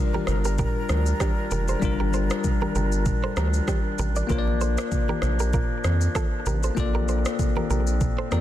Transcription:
0.00 1.77 G3 medium
0.00 4.26 G3 medium
0.00 1.78 D4 medium
0.00 8.41 D4 medium
0.00 1.79 F4 medium
0.00 4.26 F4 medium
0.00 1.83 A#4 medium
0.00 4.26 A#4 medium
0.14 0.24 G4 medium
0.14 0.23 A#4 medium
0.14 high conga medium
0.27 0.65 G1 medium
0.27 cross-stick medium
0.27 low conga medium
0.27 shaker medium
0.45 0.55 G4 medium
0.45 0.54 A#4 medium
0.45 shaker medium
0.58 0.80 G4 medium
0.58 0.79 A#4 medium
0.58 kick loud
0.58 mid tom loud
0.58 shaker medium
0.89 1.13 D2 medium
0.89 cross-stick medium
0.89 high conga medium
0.89 shaker soft
1.06 shaker medium
1.20 1.33 D4 medium
1.20 1.32 G4 medium
1.20 kick loud
1.20 cross-stick medium
1.20 high conga medium
1.20 shaker medium
1.51 1.75 F1 loud
1.51 1.63 G4 medium
1.51 1.63 A#4 medium
1.51 high conga medium
1.51 low conga medium
1.51 shaker medium
1.68 1.78 A4 medium
1.68 1.78 C5 medium
1.68 shaker medium
1.80 2.30 G1 loud
1.80 4.24 G3 medium
1.80 4.25 D4 medium
1.80 4.26 F4 medium
1.80 kick loud
1.80 low conga medium
1.80 shaker medium
1.85 4.27 A#4 medium
2.00 2.09 G4 medium
2.00 2.09 A#4 medium
2.00 high conga medium
2.13 2.25 A4 medium
2.13 2.25 C5 medium
2.13 shaker medium
2.30 cross-stick loud
2.30 shaker medium
2.44 kick loud
2.44 low conga medium
2.44 shaker medium
2.61 2.71 G4 medium
2.61 2.71 A#4 medium
2.61 high conga medium
2.75 3.12 G1 medium
2.75 2.87 G4 medium
2.75 2.87 A#4 medium
2.75 low conga medium
2.75 shaker medium
2.92 shaker medium
3.06 kick loud
3.06 mid tom loud
3.06 shaker medium
3.24 3.33 A4 medium
3.24 3.33 C5 medium
3.37 3.61 D2 medium
3.37 3.49 G4 medium
3.37 3.48 A#4 medium
3.37 cross-stick loud
3.37 high conga medium
3.37 shaker soft
3.54 shaker medium
3.68 3.80 D4 medium
3.68 3.79 G4 medium
3.68 kick loud
3.68 cross-stick medium
3.68 high conga medium
3.68 shaker medium
3.98 4.23 A1 loud
3.98 4.11 G4 medium
3.98 4.10 A#4 medium
3.98 high conga medium
3.98 low conga medium
3.98 shaker medium
4.16 4.26 A#4 medium
4.16 4.25 D5 medium
4.16 shaker medium
4.27 4.78 A#1 loud
4.27 8.41 F3 medium
4.27 6.72 A#3 medium
4.27 6.60 A#3 medium
4.27 6.73 F4 medium
4.27 6.73 A#4 medium
4.27 4.41 A#4 medium
4.27 kick loud
4.27 low conga medium
4.27 shaker medium
4.31 4.42 F4 medium
4.31 4.38 C#5 medium
4.39 6.78 D5 medium
4.47 high conga medium
4.61 4.73 A4 medium
4.61 4.72 C5 medium
4.61 shaker medium
4.78 4.88 A#4 medium
4.78 4.87 D5 medium
4.78 cross-stick loud
4.78 shaker medium
4.92 kick loud
4.92 low conga medium
4.92 shaker medium
5.09 5.19 G4 medium
5.09 5.18 A#4 medium
5.09 high conga medium
5.22 5.60 A#1 loud
5.22 cross-stick medium
5.22 low conga medium
5.22 shaker medium
5.39 5.50 G4 medium
5.39 5.49 A#4 medium
5.39 shaker medium
5.53 5.75 F4 medium
5.53 5.74 A#4 loud
5.53 kick loud
5.53 mid tom loud
5.53 shaker medium
5.84 6.08 F2 medium
5.84 cross-stick medium
5.84 high conga medium
5.84 shaker soft
6.01 shaker medium
6.15 6.27 F4 medium
6.15 6.27 A4 medium
6.15 kick loud
6.15 cross-stick medium
6.15 high conga medium
6.15 shaker medium
6.46 6.70 A1 loud
6.46 6.58 G4 medium
6.46 6.58 A#4 medium
6.46 high conga medium
6.46 low conga medium
6.46 shaker medium
6.63 6.73 A4 medium
6.63 6.73 C5 medium
6.63 shaker medium
6.75 7.25 A#1 loud
6.75 8.27 A#3 medium
6.75 8.41 C4 medium
6.75 8.28 F4 medium
6.75 8.29 A4 medium
6.75 kick loud
6.75 low conga medium
6.75 shaker medium
6.80 8.30 D5 medium
6.95 7.04 G4 medium
6.95 7.04 A#4 medium
6.95 high conga medium
7.08 7.20 A4 medium
7.08 7.20 C5 medium
7.08 shaker medium
7.25 cross-stick loud
7.25 shaker medium
7.39 kick loud
7.39 low conga medium
7.39 shaker medium
7.56 7.66 G4 medium
7.56 7.66 A#4 medium
7.56 high conga medium
7.70 8.07 A#1 loud
7.70 7.82 G4 medium
7.70 7.81 A#4 medium
7.70 low conga medium
7.70 shaker medium
7.87 shaker medium
8.01 kick loud
8.01 mid tom loud
8.01 shaker medium
8.19 8.28 A4 medium
8.19 8.27 C5 medium
8.31 8.41 F2 medium
8.31 8.41 A#3 medium
8.31 8.41 F4 medium
8.31 8.41 G4 medium
8.31 8.41 A4 medium
8.31 8.41 A#4 medium
8.31 8.41 D5 medium
8.31 cross-stick loud
8.31 high conga medium
8.31 shaker soft

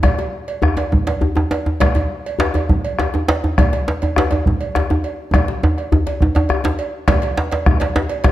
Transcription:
0.03 bombo rim medium
0.03 bombo low medium
0.03 cowbell medium
0.03 djembe slap soft
0.03 djembe tone medium
0.03 djembe bass medium
0.19 cowbell soft
0.19 djembe slap medium
0.19 djembe tone medium
0.33 djembe slap soft
0.48 cowbell soft
0.62 bombo rim medium
0.62 djembe tone loud
0.62 djembe bass medium
0.77 bombo rim soft
0.77 cowbell medium
0.77 djembe slap medium
0.77 djembe tone medium
0.92 bombo low medium
0.92 djembe tone medium
1.07 cowbell medium
1.07 djembe slap medium
1.21 djembe tone medium
1.21 djembe bass medium
1.35 djembe slap medium
1.35 djembe tone medium
1.51 cowbell soft
1.51 djembe slap medium
1.66 djembe tone medium
1.80 bombo rim loud
1.80 bombo low loud
1.80 cowbell medium
1.80 djembe slap soft
1.80 djembe slap medium
1.80 djembe bass medium
1.95 cowbell soft
1.95 djembe slap medium
1.95 djembe tone medium
2.10 djembe slap soft
2.26 cowbell soft
2.39 bombo rim loud
2.39 djembe slap loud
2.39 djembe bass medium
2.54 bombo rim soft
2.54 cowbell soft
2.54 djembe slap medium
2.54 djembe tone medium
2.69 bombo low medium
2.69 djembe tone medium
2.85 cowbell soft
2.99 bombo rim medium
2.99 cowbell soft
2.99 djembe slap medium
2.99 djembe bass medium
3.14 djembe slap medium
3.14 djembe tone medium
3.28 cowbell medium
3.28 djembe slap loud
3.44 djembe tone medium
3.58 bombo rim medium
3.58 bombo low loud
3.58 cowbell medium
3.58 djembe slap soft
3.58 djembe tone medium
3.58 djembe bass medium
3.73 cowbell soft
3.73 djembe slap medium
3.73 djembe tone medium
3.87 djembe slap soft
3.87 djembe slap medium
4.02 cowbell soft
4.02 djembe tone medium
4.16 bombo rim medium
4.16 djembe slap loud
4.16 djembe bass medium
4.31 bombo rim soft
4.31 cowbell soft
4.31 djembe slap medium
4.31 djembe tone medium
4.46 bombo low medium
4.46 djembe tone medium
4.61 cowbell soft
4.75 bombo rim medium
4.75 cowbell soft
4.75 djembe slap medium
4.75 djembe bass medium
4.90 djembe slap medium
4.90 djembe tone medium
5.04 cowbell soft
5.33 bombo rim medium
5.33 bombo low medium
5.33 cowbell soft
5.33 djembe slap soft
5.33 djembe tone loud
5.33 djembe bass medium
5.48 djembe slap medium
5.48 djembe tone medium
5.63 djembe tone loud
5.78 bombo rim soft
5.78 cowbell soft
5.92 djembe slap soft
5.92 djembe tone loud
5.92 djembe bass medium
6.07 cowbell soft
6.07 djembe slap medium
6.07 djembe tone medium
6.21 bombo rim soft
6.21 bombo low medium
6.21 djembe tone loud
6.35 cowbell soft
6.35 djembe slap soft
6.35 djembe tone loud
6.49 bombo rim medium
6.49 cowbell soft
6.49 djembe bass medium
6.64 bombo rim soft
6.64 djembe slap medium
6.64 djembe tone medium
6.79 cowbell soft
7.08 bombo rim loud
7.08 bombo low loud
7.08 cowbell medium
7.08 djembe slap loud
7.08 djembe tone loud
7.08 djembe bass medium
7.22 cowbell medium
7.22 djembe slap medium
7.37 bombo rim soft
7.37 djembe slap medium
7.51 cowbell medium
7.51 djembe slap soft
7.51 djembe slap medium
7.66 bombo rim loud
7.66 bombo low loud
7.66 djembe slap soft
7.66 djembe tone medium
7.66 djembe bass medium
7.80 cowbell medium
7.80 djembe slap medium
7.96 djembe slap loud
7.96 djembe tone medium
8.09 cowbell medium
8.09 djembe slap soft
8.24 bombo rim medium
8.24 bombo low medium
8.24 cowbell medium
8.24 djembe slap medium
8.24 djembe bass medium

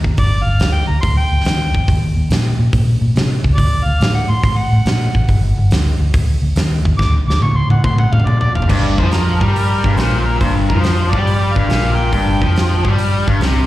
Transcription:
0.04 0.14 D#2 medium
0.04 kick medium
0.17 0.39 G1 medium
0.17 0.45 D5 loud
0.17 kick loud
0.17 open hi-hat medium
0.43 0.57 G1 medium
0.43 0.72 F5 loud
0.59 0.81 D2 medium
0.59 snare loud
0.59 open hi-hat soft
0.72 0.87 G5 medium
0.87 0.99 D2 medium
0.87 1.00 A#5 medium
1.01 1.24 D2 medium
1.01 1.16 C6 loud
1.01 kick loud
1.01 open hi-hat medium
1.17 2.00 G5 loud
1.32 1.42 D2 medium
1.40 snare soft
1.45 1.66 D#2 medium
1.45 snare loud
1.45 open hi-hat medium
1.74 1.84 D#2 medium
1.74 kick medium
1.88 2.09 D#2 medium
1.88 kick loud
1.88 open hi-hat medium
2.16 2.27 D#2 medium
2.30 2.52 A#2 medium
2.30 snare loud
2.30 open hi-hat medium
2.59 2.69 A#2 medium
2.73 2.95 A#2 medium
2.73 kick loud
2.73 open hi-hat medium
3.01 3.12 A#2 medium
3.15 3.37 C3 medium
3.15 snare loud
3.15 open hi-hat medium
3.44 3.55 C#2 medium
3.44 kick medium
3.55 3.79 D2 medium
3.55 3.86 D5 loud
3.55 kick loud
3.55 open hi-hat medium
3.84 3.97 D2 medium
3.84 4.13 F5 loud
4.00 4.22 A2 medium
4.00 snare loud
4.00 open hi-hat medium
4.14 4.32 F#5 medium
4.29 4.39 A2 medium
4.29 4.44 C6 medium
4.43 4.65 A2 medium
4.43 4.58 C6 loud
4.43 kick loud
4.43 open hi-hat medium
4.57 5.40 F#5 loud
4.72 4.82 A2 medium
4.85 5.07 A#2 medium
4.85 snare loud
4.85 open hi-hat medium
5.15 5.25 A1 medium
5.15 kick medium
5.28 5.50 G1 loud
5.28 kick loud
5.28 open hi-hat medium
5.58 5.68 G1 loud
5.71 5.92 D2 medium
5.71 snare loud
5.71 open hi-hat medium
6.00 6.10 D2 medium
6.14 6.35 D2 medium
6.14 kick loud
6.14 open hi-hat medium
6.42 6.52 D2 medium
6.56 6.77 D#2 medium
6.56 snare loud
6.56 open hi-hat medium
6.85 6.95 D#2 medium
6.85 kick medium
6.98 7.20 D2 loud
6.98 7.12 D6 loud
6.98 kick loud
6.98 snare medium
7.27 7.37 D2 medium
7.27 7.42 D6 loud
7.27 snare medium
7.40 7.62 A2 medium
7.40 7.58 C#6 loud
7.40 high tom medium
7.57 7.70 C6 medium
7.69 7.80 A2 medium
7.69 7.84 F#5 medium
7.69 high tom medium
7.84 8.05 A2 loud
7.84 7.98 C6 medium
7.84 kick loud
7.84 mid tom medium
7.98 8.14 F#5 loud
7.98 mid tom medium
8.12 8.23 A2 medium
8.12 8.28 F5 medium
8.12 mid tom medium
8.20 mid tom medium
8.26 8.48 A#2 medium
8.26 8.40 D5 medium
8.26 mid tom medium
8.40 8.55 D5 loud
8.40 floor tom medium
8.55 8.66 F#1 medium
8.55 8.71 F5 medium
8.55 floor tom medium
8.62 floor tom medium
8.69 8.96 G1 medium
8.69 8.98 G2 loud
8.69 8.98 D5 medium
8.69 kick loud
8.69 crash loud
8.97 9.38 F2 medium
8.97 9.40 F3 loud
8.97 9.11 C5 medium
8.97 kick loud
9.11 9.52 A#4 medium
9.11 snare loud
9.11 open hi-hat medium
9.41 9.81 G2 medium
9.41 9.83 G3 medium
9.41 kick medium
9.53 9.98 A#4 medium
9.53 open hi-hat medium
9.84 9.97 G1 medium
9.84 9.98 G2 medium
9.84 kick loud
9.97 10.38 A#1 medium
9.97 10.40 A#2 medium
9.97 10.28 C5 medium
9.97 snare loud
9.97 open hi-hat medium
10.26 10.40 A#4 medium
10.41 10.68 G1 medium
10.41 10.69 G2 loud
10.41 10.54 C5 medium
10.41 kick loud
10.41 open hi-hat medium
10.69 11.10 F2 medium
10.69 11.12 F3 loud
10.69 10.82 A#4 medium
10.69 kick loud
10.80 11.11 C5 medium
10.80 open hi-hat medium
10.85 snare loud
11.10 11.53 G2 medium
11.10 11.54 G3 loud
11.10 11.54 D5 medium
11.10 kick loud
11.27 open hi-hat medium
11.53 11.69 G1 medium
11.53 11.69 G2 medium
11.53 11.98 F5 loud
11.53 kick loud
11.68 12.10 A#1 medium
11.68 12.11 A#2 loud
11.68 snare loud
11.68 open hi-hat medium
11.96 12.84 G5 loud
12.12 12.40 G1 medium
12.12 12.41 G2 loud
12.12 kick loud
12.12 open hi-hat medium
12.41 12.82 F2 loud
12.41 12.83 F3 loud
12.41 kick loud
12.56 snare loud
12.56 open hi-hat medium
12.83 13.25 G2 medium
12.83 13.26 G3 medium
12.83 kick loud
12.98 open hi-hat medium
13.27 13.41 G1 medium
13.27 13.41 G2 medium
13.27 kick loud
13.41 13.66 C2 medium
13.41 13.66 C3 medium
13.41 snare loud
13.41 open hi-hat medium

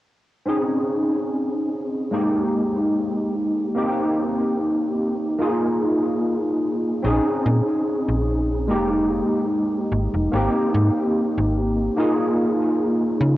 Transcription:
0.46 2.03 C4 medium
0.46 2.04 C#4 medium
0.46 2.04 D#4 medium
0.46 2.05 G#4 medium
2.11 3.68 G#3 medium
2.11 3.68 A#3 medium
2.11 3.69 D#4 medium
2.11 3.69 G4 medium
3.74 5.32 A#3 medium
3.74 5.32 C4 medium
3.74 5.33 D#4 medium
3.74 5.33 G4 medium
5.38 6.96 A#3 medium
5.38 6.97 D#4 medium
5.38 6.97 F4 medium
5.38 6.98 G#4 medium
7.03 7.20 A#1 medium
7.03 8.60 C4 medium
7.03 8.61 C#4 medium
7.03 8.61 D#4 medium
7.03 8.62 G#4 medium
7.46 7.62 A#2 medium
8.08 8.70 A#1 medium
8.67 9.22 F1 medium
8.67 10.25 G#3 medium
8.67 10.25 A#3 medium
8.67 10.26 D#4 medium
8.67 10.26 G4 medium
9.92 10.08 G#1 medium
10.14 10.28 F1 medium
10.32 10.49 G#1 medium
10.32 11.89 A#3 medium
10.32 11.90 C4 medium
10.32 11.90 D#4 medium
10.32 11.91 G4 medium
10.74 10.90 G#2 loud
11.38 11.89 G#1 medium
11.96 13.37 A#3 medium
11.96 13.37 D#4 medium
11.96 13.37 F4 medium
11.96 13.37 G#4 medium
13.21 13.37 C#3 loud

